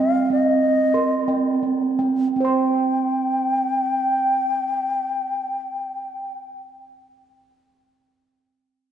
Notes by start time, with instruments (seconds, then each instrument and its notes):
0.00 steel tongue drum C4 G5, bansuri F5
0.30 steel tongue drum C4, bansuri D#5
0.94 steel tongue drum A#4 C6
1.28 steel tongue drum C4 G5
1.63 steel tongue drum C4
1.99 steel tongue drum C4 G5
2.36 steel tongue drum C4, bansuri G5
2.40 steel tongue drum C5
2.45 steel tongue drum C6